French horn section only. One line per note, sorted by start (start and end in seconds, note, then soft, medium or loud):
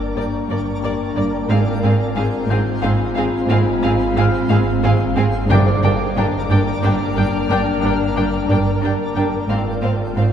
0.00 1.46 A#3 medium
0.00 1.46 D4 medium
1.50 5.33 C4 loud
1.50 5.33 F4 medium
5.50 9.46 A#3 loud
5.50 9.46 D4 loud
9.49 10.33 C4 medium
9.49 10.33 F4 medium